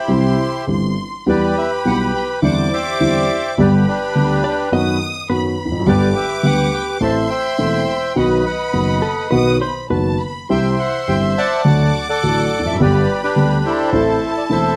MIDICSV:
0, 0, Header, 1, 5, 480
1, 0, Start_track
1, 0, Tempo, 577478
1, 1056, Time_signature, 4, 2, 24, 8
1, 10162, Tempo, 569260
1, 12300, End_track
2, 0, Start_track
2, 0, Title_t, "Violin section"
2, 0, Program_c, 0, 48
2, 87, Note_on_c, 0, 84, 79
2, 559, Note_off_c, 0, 84, 0
2, 569, Note_on_c, 0, 84, 71
2, 1023, Note_off_c, 0, 84, 0
2, 1060, Note_on_c, 0, 83, 79
2, 1988, Note_off_c, 0, 83, 0
2, 2024, Note_on_c, 0, 86, 87
2, 2975, Note_on_c, 0, 83, 78
2, 2981, Note_off_c, 0, 86, 0
2, 3894, Note_off_c, 0, 83, 0
2, 3930, Note_on_c, 0, 87, 90
2, 4372, Note_off_c, 0, 87, 0
2, 4405, Note_on_c, 0, 83, 77
2, 4880, Note_off_c, 0, 83, 0
2, 4882, Note_on_c, 0, 86, 86
2, 5829, Note_off_c, 0, 86, 0
2, 5830, Note_on_c, 0, 84, 81
2, 6783, Note_off_c, 0, 84, 0
2, 6784, Note_on_c, 0, 83, 83
2, 7710, Note_off_c, 0, 83, 0
2, 7747, Note_on_c, 0, 87, 81
2, 7987, Note_off_c, 0, 87, 0
2, 7988, Note_on_c, 0, 83, 60
2, 8214, Note_off_c, 0, 83, 0
2, 8234, Note_on_c, 0, 81, 66
2, 8460, Note_off_c, 0, 81, 0
2, 8475, Note_on_c, 0, 83, 68
2, 8718, Note_off_c, 0, 83, 0
2, 8718, Note_on_c, 0, 84, 73
2, 9647, Note_off_c, 0, 84, 0
2, 9677, Note_on_c, 0, 86, 83
2, 10610, Note_off_c, 0, 86, 0
2, 10640, Note_on_c, 0, 83, 75
2, 11596, Note_on_c, 0, 81, 81
2, 11599, Note_off_c, 0, 83, 0
2, 12300, Note_off_c, 0, 81, 0
2, 12300, End_track
3, 0, Start_track
3, 0, Title_t, "Bandoneon"
3, 0, Program_c, 1, 23
3, 0, Note_on_c, 1, 64, 54
3, 0, Note_on_c, 1, 67, 55
3, 0, Note_on_c, 1, 72, 70
3, 546, Note_off_c, 1, 64, 0
3, 547, Note_off_c, 1, 67, 0
3, 547, Note_off_c, 1, 72, 0
3, 1067, Note_on_c, 1, 67, 55
3, 1071, Note_on_c, 1, 71, 57
3, 1075, Note_on_c, 1, 74, 76
3, 1292, Note_off_c, 1, 74, 0
3, 1314, Note_on_c, 1, 76, 71
3, 1418, Note_off_c, 1, 76, 0
3, 1553, Note_on_c, 1, 78, 76
3, 1657, Note_off_c, 1, 78, 0
3, 1794, Note_on_c, 1, 79, 76
3, 1899, Note_off_c, 1, 79, 0
3, 1992, Note_off_c, 1, 67, 0
3, 1993, Note_off_c, 1, 71, 0
3, 2026, Note_on_c, 1, 72, 54
3, 2026, Note_on_c, 1, 78, 74
3, 2030, Note_on_c, 1, 74, 61
3, 2133, Note_off_c, 1, 78, 0
3, 2260, Note_off_c, 1, 72, 0
3, 2272, Note_on_c, 1, 72, 59
3, 2272, Note_on_c, 1, 76, 80
3, 2274, Note_on_c, 1, 67, 56
3, 2951, Note_off_c, 1, 72, 0
3, 2951, Note_off_c, 1, 74, 0
3, 2952, Note_off_c, 1, 67, 0
3, 2989, Note_on_c, 1, 74, 70
3, 2991, Note_on_c, 1, 67, 53
3, 2994, Note_on_c, 1, 71, 54
3, 3006, Note_off_c, 1, 76, 0
3, 3094, Note_off_c, 1, 74, 0
3, 3207, Note_off_c, 1, 71, 0
3, 3213, Note_off_c, 1, 67, 0
3, 3220, Note_on_c, 1, 71, 70
3, 3225, Note_on_c, 1, 62, 47
3, 3225, Note_on_c, 1, 67, 45
3, 3899, Note_off_c, 1, 62, 0
3, 3900, Note_off_c, 1, 67, 0
3, 4134, Note_off_c, 1, 71, 0
3, 4887, Note_on_c, 1, 74, 74
3, 4891, Note_on_c, 1, 67, 56
3, 4891, Note_on_c, 1, 71, 54
3, 5104, Note_off_c, 1, 74, 0
3, 5122, Note_on_c, 1, 76, 71
3, 5363, Note_on_c, 1, 78, 83
3, 5364, Note_off_c, 1, 76, 0
3, 5599, Note_on_c, 1, 79, 73
3, 5603, Note_off_c, 1, 78, 0
3, 5704, Note_off_c, 1, 79, 0
3, 5801, Note_off_c, 1, 67, 0
3, 5801, Note_off_c, 1, 71, 0
3, 5837, Note_on_c, 1, 81, 82
3, 5849, Note_on_c, 1, 76, 61
3, 5852, Note_on_c, 1, 72, 62
3, 5942, Note_off_c, 1, 81, 0
3, 6066, Note_on_c, 1, 79, 83
3, 6067, Note_off_c, 1, 76, 0
3, 6068, Note_off_c, 1, 72, 0
3, 6079, Note_on_c, 1, 76, 58
3, 6081, Note_on_c, 1, 72, 62
3, 6756, Note_off_c, 1, 76, 0
3, 6757, Note_off_c, 1, 72, 0
3, 6787, Note_on_c, 1, 78, 76
3, 6802, Note_on_c, 1, 71, 57
3, 6803, Note_on_c, 1, 75, 54
3, 6804, Note_off_c, 1, 79, 0
3, 6894, Note_off_c, 1, 78, 0
3, 7024, Note_off_c, 1, 75, 0
3, 7026, Note_off_c, 1, 71, 0
3, 7029, Note_on_c, 1, 78, 65
3, 7037, Note_on_c, 1, 75, 51
3, 7038, Note_on_c, 1, 71, 50
3, 7956, Note_off_c, 1, 78, 0
3, 7959, Note_off_c, 1, 75, 0
3, 7960, Note_off_c, 1, 71, 0
3, 8727, Note_on_c, 1, 79, 79
3, 8732, Note_on_c, 1, 76, 58
3, 8733, Note_on_c, 1, 72, 64
3, 8893, Note_off_c, 1, 79, 0
3, 8913, Note_on_c, 1, 79, 50
3, 8965, Note_off_c, 1, 79, 0
3, 8970, Note_on_c, 1, 78, 74
3, 9212, Note_off_c, 1, 78, 0
3, 9214, Note_on_c, 1, 79, 80
3, 9319, Note_off_c, 1, 79, 0
3, 9456, Note_on_c, 1, 81, 84
3, 9461, Note_on_c, 1, 78, 58
3, 9462, Note_on_c, 1, 74, 57
3, 9654, Note_off_c, 1, 76, 0
3, 9655, Note_off_c, 1, 72, 0
3, 10015, Note_off_c, 1, 81, 0
3, 10038, Note_off_c, 1, 78, 0
3, 10041, Note_off_c, 1, 74, 0
3, 10051, Note_on_c, 1, 78, 84
3, 10053, Note_on_c, 1, 74, 56
3, 10055, Note_on_c, 1, 69, 59
3, 10497, Note_off_c, 1, 78, 0
3, 10534, Note_on_c, 1, 76, 75
3, 10618, Note_off_c, 1, 74, 0
3, 10619, Note_off_c, 1, 69, 0
3, 10653, Note_off_c, 1, 76, 0
3, 10662, Note_on_c, 1, 71, 61
3, 10662, Note_on_c, 1, 74, 79
3, 10666, Note_on_c, 1, 67, 53
3, 10988, Note_off_c, 1, 74, 0
3, 10996, Note_off_c, 1, 71, 0
3, 11001, Note_off_c, 1, 67, 0
3, 11009, Note_on_c, 1, 71, 72
3, 11013, Note_on_c, 1, 67, 55
3, 11019, Note_on_c, 1, 62, 60
3, 11366, Note_on_c, 1, 72, 79
3, 11369, Note_on_c, 1, 64, 59
3, 11373, Note_on_c, 1, 69, 58
3, 11375, Note_off_c, 1, 71, 0
3, 11573, Note_off_c, 1, 67, 0
3, 11576, Note_off_c, 1, 62, 0
3, 11930, Note_off_c, 1, 72, 0
3, 11973, Note_on_c, 1, 74, 71
3, 12024, Note_off_c, 1, 74, 0
3, 12086, Note_off_c, 1, 69, 0
3, 12094, Note_on_c, 1, 76, 79
3, 12099, Note_on_c, 1, 69, 55
3, 12100, Note_on_c, 1, 72, 52
3, 12290, Note_off_c, 1, 64, 0
3, 12300, Note_off_c, 1, 69, 0
3, 12300, Note_off_c, 1, 72, 0
3, 12300, Note_off_c, 1, 76, 0
3, 12300, End_track
4, 0, Start_track
4, 0, Title_t, "Hollow-body jazz guitar"
4, 0, Program_c, 2, 26
4, 3692, Note_on_c, 2, 74, 71
4, 3756, Note_off_c, 2, 74, 0
4, 3932, Note_on_c, 2, 75, 90
4, 4399, Note_off_c, 2, 75, 0
4, 4402, Note_on_c, 2, 71, 59
4, 4735, Note_off_c, 2, 71, 0
4, 7498, Note_on_c, 2, 69, 62
4, 7724, Note_off_c, 2, 69, 0
4, 7736, Note_on_c, 2, 71, 73
4, 7988, Note_off_c, 2, 71, 0
4, 7992, Note_on_c, 2, 72, 76
4, 8216, Note_off_c, 2, 72, 0
4, 8233, Note_on_c, 2, 71, 59
4, 8572, Note_off_c, 2, 71, 0
4, 12300, End_track
5, 0, Start_track
5, 0, Title_t, "Grand piano"
5, 0, Program_c, 3, 0
5, 67, Note_on_c, 3, 52, 54
5, 68, Note_on_c, 3, 55, 46
5, 69, Note_on_c, 3, 36, 67
5, 69, Note_on_c, 3, 48, 65
5, 72, Note_on_c, 3, 60, 50
5, 74, Note_on_c, 3, 67, 57
5, 277, Note_off_c, 3, 52, 0
5, 278, Note_off_c, 3, 55, 0
5, 279, Note_off_c, 3, 36, 0
5, 279, Note_off_c, 3, 48, 0
5, 280, Note_off_c, 3, 60, 0
5, 281, Note_off_c, 3, 67, 0
5, 557, Note_on_c, 3, 55, 35
5, 558, Note_on_c, 3, 31, 41
5, 559, Note_on_c, 3, 52, 36
5, 561, Note_on_c, 3, 43, 44
5, 562, Note_on_c, 3, 60, 32
5, 564, Note_on_c, 3, 67, 40
5, 768, Note_off_c, 3, 55, 0
5, 769, Note_off_c, 3, 31, 0
5, 769, Note_off_c, 3, 52, 0
5, 770, Note_off_c, 3, 43, 0
5, 771, Note_off_c, 3, 60, 0
5, 772, Note_off_c, 3, 67, 0
5, 1049, Note_on_c, 3, 52, 68
5, 1053, Note_on_c, 3, 40, 62
5, 1053, Note_on_c, 3, 55, 53
5, 1053, Note_on_c, 3, 59, 53
5, 1056, Note_on_c, 3, 67, 65
5, 1258, Note_off_c, 3, 40, 0
5, 1258, Note_off_c, 3, 52, 0
5, 1258, Note_off_c, 3, 55, 0
5, 1258, Note_off_c, 3, 59, 0
5, 1260, Note_off_c, 3, 67, 0
5, 1539, Note_on_c, 3, 52, 37
5, 1539, Note_on_c, 3, 55, 33
5, 1541, Note_on_c, 3, 67, 41
5, 1542, Note_on_c, 3, 35, 44
5, 1542, Note_on_c, 3, 47, 41
5, 1543, Note_on_c, 3, 59, 30
5, 1740, Note_off_c, 3, 52, 0
5, 1740, Note_off_c, 3, 55, 0
5, 1742, Note_off_c, 3, 35, 0
5, 1742, Note_off_c, 3, 47, 0
5, 1742, Note_off_c, 3, 59, 0
5, 1742, Note_off_c, 3, 67, 0
5, 2014, Note_on_c, 3, 40, 69
5, 2016, Note_on_c, 3, 50, 52
5, 2017, Note_on_c, 3, 60, 48
5, 2018, Note_on_c, 3, 52, 65
5, 2018, Note_on_c, 3, 55, 51
5, 2018, Note_on_c, 3, 64, 67
5, 2220, Note_off_c, 3, 40, 0
5, 2220, Note_off_c, 3, 50, 0
5, 2220, Note_off_c, 3, 55, 0
5, 2220, Note_off_c, 3, 60, 0
5, 2221, Note_off_c, 3, 52, 0
5, 2221, Note_off_c, 3, 64, 0
5, 2496, Note_on_c, 3, 40, 45
5, 2497, Note_on_c, 3, 52, 45
5, 2498, Note_on_c, 3, 50, 34
5, 2498, Note_on_c, 3, 55, 35
5, 2501, Note_on_c, 3, 60, 33
5, 2501, Note_on_c, 3, 64, 43
5, 2699, Note_off_c, 3, 40, 0
5, 2699, Note_off_c, 3, 52, 0
5, 2700, Note_off_c, 3, 50, 0
5, 2700, Note_off_c, 3, 55, 0
5, 2701, Note_off_c, 3, 60, 0
5, 2701, Note_off_c, 3, 64, 0
5, 2973, Note_on_c, 3, 55, 54
5, 2974, Note_on_c, 3, 50, 61
5, 2976, Note_on_c, 3, 31, 67
5, 2976, Note_on_c, 3, 59, 56
5, 2977, Note_on_c, 3, 43, 71
5, 2980, Note_on_c, 3, 67, 65
5, 3177, Note_off_c, 3, 50, 0
5, 3177, Note_off_c, 3, 55, 0
5, 3178, Note_off_c, 3, 31, 0
5, 3178, Note_off_c, 3, 43, 0
5, 3178, Note_off_c, 3, 59, 0
5, 3180, Note_off_c, 3, 67, 0
5, 3451, Note_on_c, 3, 55, 34
5, 3452, Note_on_c, 3, 50, 44
5, 3454, Note_on_c, 3, 38, 40
5, 3454, Note_on_c, 3, 59, 34
5, 3458, Note_on_c, 3, 67, 41
5, 3652, Note_off_c, 3, 55, 0
5, 3653, Note_off_c, 3, 38, 0
5, 3653, Note_off_c, 3, 59, 0
5, 3655, Note_off_c, 3, 50, 0
5, 3655, Note_off_c, 3, 67, 0
5, 3924, Note_on_c, 3, 42, 66
5, 3924, Note_on_c, 3, 54, 72
5, 3925, Note_on_c, 3, 51, 54
5, 3925, Note_on_c, 3, 59, 58
5, 3929, Note_on_c, 3, 66, 64
5, 4126, Note_off_c, 3, 51, 0
5, 4126, Note_off_c, 3, 59, 0
5, 4127, Note_off_c, 3, 54, 0
5, 4128, Note_off_c, 3, 42, 0
5, 4128, Note_off_c, 3, 66, 0
5, 4400, Note_on_c, 3, 42, 47
5, 4402, Note_on_c, 3, 51, 37
5, 4402, Note_on_c, 3, 59, 38
5, 4405, Note_on_c, 3, 54, 48
5, 4407, Note_on_c, 3, 66, 42
5, 4604, Note_off_c, 3, 51, 0
5, 4604, Note_off_c, 3, 59, 0
5, 4605, Note_off_c, 3, 42, 0
5, 4605, Note_off_c, 3, 54, 0
5, 4606, Note_off_c, 3, 66, 0
5, 4699, Note_on_c, 3, 40, 41
5, 4753, Note_on_c, 3, 41, 53
5, 4760, Note_off_c, 3, 40, 0
5, 4817, Note_off_c, 3, 41, 0
5, 4817, Note_on_c, 3, 42, 60
5, 4872, Note_on_c, 3, 50, 62
5, 4873, Note_on_c, 3, 55, 57
5, 4876, Note_on_c, 3, 31, 70
5, 4876, Note_on_c, 3, 43, 77
5, 4877, Note_on_c, 3, 59, 57
5, 4878, Note_off_c, 3, 42, 0
5, 4879, Note_on_c, 3, 67, 67
5, 5075, Note_off_c, 3, 50, 0
5, 5076, Note_off_c, 3, 55, 0
5, 5077, Note_off_c, 3, 31, 0
5, 5077, Note_off_c, 3, 43, 0
5, 5077, Note_off_c, 3, 59, 0
5, 5078, Note_off_c, 3, 67, 0
5, 5346, Note_on_c, 3, 50, 44
5, 5347, Note_on_c, 3, 59, 37
5, 5348, Note_on_c, 3, 38, 43
5, 5348, Note_on_c, 3, 55, 35
5, 5351, Note_on_c, 3, 67, 38
5, 5550, Note_off_c, 3, 50, 0
5, 5550, Note_off_c, 3, 55, 0
5, 5550, Note_off_c, 3, 59, 0
5, 5551, Note_off_c, 3, 38, 0
5, 5552, Note_off_c, 3, 67, 0
5, 5823, Note_on_c, 3, 52, 57
5, 5824, Note_on_c, 3, 57, 51
5, 5825, Note_on_c, 3, 33, 69
5, 5825, Note_on_c, 3, 60, 53
5, 5826, Note_on_c, 3, 45, 67
5, 5829, Note_on_c, 3, 69, 67
5, 6025, Note_off_c, 3, 52, 0
5, 6025, Note_off_c, 3, 57, 0
5, 6026, Note_off_c, 3, 33, 0
5, 6026, Note_off_c, 3, 45, 0
5, 6026, Note_off_c, 3, 60, 0
5, 6028, Note_off_c, 3, 69, 0
5, 6302, Note_on_c, 3, 52, 39
5, 6302, Note_on_c, 3, 60, 36
5, 6304, Note_on_c, 3, 28, 50
5, 6304, Note_on_c, 3, 57, 36
5, 6304, Note_on_c, 3, 69, 44
5, 6305, Note_on_c, 3, 40, 48
5, 6504, Note_off_c, 3, 52, 0
5, 6504, Note_off_c, 3, 60, 0
5, 6505, Note_off_c, 3, 28, 0
5, 6505, Note_off_c, 3, 40, 0
5, 6505, Note_off_c, 3, 57, 0
5, 6505, Note_off_c, 3, 69, 0
5, 6780, Note_on_c, 3, 51, 56
5, 6783, Note_on_c, 3, 54, 49
5, 6784, Note_on_c, 3, 47, 69
5, 6785, Note_on_c, 3, 35, 69
5, 6785, Note_on_c, 3, 59, 50
5, 6785, Note_on_c, 3, 66, 65
5, 6982, Note_off_c, 3, 51, 0
5, 6984, Note_off_c, 3, 47, 0
5, 6984, Note_off_c, 3, 54, 0
5, 6985, Note_off_c, 3, 35, 0
5, 6985, Note_off_c, 3, 59, 0
5, 6985, Note_off_c, 3, 66, 0
5, 7258, Note_on_c, 3, 30, 42
5, 7259, Note_on_c, 3, 42, 44
5, 7260, Note_on_c, 3, 54, 32
5, 7261, Note_on_c, 3, 51, 33
5, 7262, Note_on_c, 3, 59, 32
5, 7263, Note_on_c, 3, 66, 41
5, 7462, Note_off_c, 3, 30, 0
5, 7462, Note_off_c, 3, 42, 0
5, 7463, Note_off_c, 3, 51, 0
5, 7463, Note_off_c, 3, 54, 0
5, 7464, Note_off_c, 3, 59, 0
5, 7464, Note_off_c, 3, 66, 0
5, 7744, Note_on_c, 3, 54, 50
5, 7746, Note_on_c, 3, 47, 68
5, 7746, Note_on_c, 3, 51, 57
5, 7747, Note_on_c, 3, 59, 50
5, 7748, Note_on_c, 3, 35, 66
5, 7749, Note_on_c, 3, 66, 59
5, 7947, Note_off_c, 3, 54, 0
5, 7948, Note_off_c, 3, 47, 0
5, 7948, Note_off_c, 3, 51, 0
5, 7948, Note_off_c, 3, 59, 0
5, 7949, Note_off_c, 3, 35, 0
5, 7949, Note_off_c, 3, 66, 0
5, 8229, Note_on_c, 3, 51, 40
5, 8229, Note_on_c, 3, 54, 34
5, 8230, Note_on_c, 3, 30, 46
5, 8230, Note_on_c, 3, 42, 43
5, 8231, Note_on_c, 3, 59, 34
5, 8231, Note_on_c, 3, 66, 42
5, 8435, Note_off_c, 3, 51, 0
5, 8436, Note_off_c, 3, 30, 0
5, 8436, Note_off_c, 3, 42, 0
5, 8436, Note_off_c, 3, 54, 0
5, 8436, Note_off_c, 3, 59, 0
5, 8436, Note_off_c, 3, 66, 0
5, 8722, Note_on_c, 3, 52, 56
5, 8724, Note_on_c, 3, 55, 49
5, 8726, Note_on_c, 3, 60, 49
5, 8728, Note_on_c, 3, 36, 64
5, 8728, Note_on_c, 3, 48, 67
5, 8728, Note_on_c, 3, 67, 56
5, 8922, Note_off_c, 3, 52, 0
5, 8923, Note_off_c, 3, 55, 0
5, 8924, Note_off_c, 3, 60, 0
5, 8925, Note_off_c, 3, 36, 0
5, 8925, Note_off_c, 3, 48, 0
5, 8925, Note_off_c, 3, 67, 0
5, 9209, Note_on_c, 3, 43, 40
5, 9209, Note_on_c, 3, 52, 33
5, 9209, Note_on_c, 3, 55, 33
5, 9210, Note_on_c, 3, 60, 34
5, 9211, Note_on_c, 3, 31, 38
5, 9215, Note_on_c, 3, 67, 36
5, 9406, Note_off_c, 3, 55, 0
5, 9407, Note_off_c, 3, 31, 0
5, 9407, Note_off_c, 3, 43, 0
5, 9407, Note_off_c, 3, 52, 0
5, 9407, Note_off_c, 3, 60, 0
5, 9409, Note_off_c, 3, 67, 0
5, 9680, Note_on_c, 3, 50, 67
5, 9682, Note_on_c, 3, 38, 67
5, 9682, Note_on_c, 3, 54, 50
5, 9682, Note_on_c, 3, 57, 51
5, 9687, Note_on_c, 3, 66, 67
5, 9882, Note_off_c, 3, 50, 0
5, 9883, Note_off_c, 3, 38, 0
5, 9883, Note_off_c, 3, 54, 0
5, 9883, Note_off_c, 3, 57, 0
5, 9885, Note_off_c, 3, 66, 0
5, 10168, Note_on_c, 3, 45, 46
5, 10168, Note_on_c, 3, 54, 37
5, 10169, Note_on_c, 3, 50, 40
5, 10170, Note_on_c, 3, 33, 45
5, 10170, Note_on_c, 3, 66, 43
5, 10171, Note_on_c, 3, 57, 37
5, 10369, Note_off_c, 3, 45, 0
5, 10369, Note_off_c, 3, 54, 0
5, 10370, Note_off_c, 3, 33, 0
5, 10370, Note_off_c, 3, 50, 0
5, 10370, Note_off_c, 3, 66, 0
5, 10371, Note_off_c, 3, 57, 0
5, 10469, Note_on_c, 3, 40, 39
5, 10525, Note_on_c, 3, 41, 49
5, 10527, Note_off_c, 3, 40, 0
5, 10585, Note_off_c, 3, 41, 0
5, 10588, Note_on_c, 3, 42, 62
5, 10646, Note_off_c, 3, 42, 0
5, 10646, Note_on_c, 3, 59, 58
5, 10647, Note_on_c, 3, 31, 73
5, 10647, Note_on_c, 3, 50, 60
5, 10647, Note_on_c, 3, 55, 55
5, 10648, Note_on_c, 3, 43, 75
5, 10652, Note_on_c, 3, 67, 64
5, 10847, Note_off_c, 3, 31, 0
5, 10847, Note_off_c, 3, 43, 0
5, 10847, Note_off_c, 3, 50, 0
5, 10847, Note_off_c, 3, 55, 0
5, 10847, Note_off_c, 3, 59, 0
5, 10849, Note_off_c, 3, 67, 0
5, 11118, Note_on_c, 3, 50, 46
5, 11118, Note_on_c, 3, 55, 35
5, 11120, Note_on_c, 3, 38, 45
5, 11121, Note_on_c, 3, 59, 36
5, 11124, Note_on_c, 3, 67, 43
5, 11321, Note_off_c, 3, 55, 0
5, 11322, Note_off_c, 3, 38, 0
5, 11322, Note_off_c, 3, 50, 0
5, 11323, Note_off_c, 3, 59, 0
5, 11324, Note_off_c, 3, 67, 0
5, 11595, Note_on_c, 3, 52, 67
5, 11597, Note_on_c, 3, 45, 71
5, 11597, Note_on_c, 3, 57, 54
5, 11598, Note_on_c, 3, 33, 73
5, 11598, Note_on_c, 3, 60, 53
5, 11599, Note_on_c, 3, 69, 72
5, 11800, Note_off_c, 3, 52, 0
5, 11801, Note_off_c, 3, 33, 0
5, 11801, Note_off_c, 3, 45, 0
5, 11801, Note_off_c, 3, 57, 0
5, 11801, Note_off_c, 3, 60, 0
5, 11802, Note_off_c, 3, 69, 0
5, 12075, Note_on_c, 3, 52, 42
5, 12077, Note_on_c, 3, 40, 50
5, 12077, Note_on_c, 3, 57, 41
5, 12078, Note_on_c, 3, 28, 50
5, 12079, Note_on_c, 3, 69, 47
5, 12081, Note_on_c, 3, 60, 39
5, 12279, Note_off_c, 3, 52, 0
5, 12280, Note_off_c, 3, 28, 0
5, 12280, Note_off_c, 3, 40, 0
5, 12280, Note_off_c, 3, 57, 0
5, 12281, Note_off_c, 3, 69, 0
5, 12282, Note_off_c, 3, 60, 0
5, 12300, End_track
0, 0, End_of_file